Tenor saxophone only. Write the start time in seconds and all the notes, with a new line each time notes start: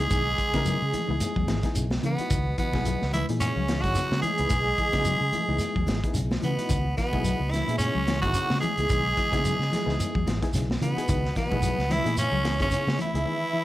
Already playing: G#4
2.05 B3
2.59 B3
3.13 E4
3.41 C#4
3.81 F#4
4.22 G#4
6.44 B3
6.97 B3
7.51 E4
7.78 C#4
8.22 F#4
8.61 G#4
10.83 B3
11.37 B3
11.92 E4
12.18 C#4
12.62 C#4
13.01 E4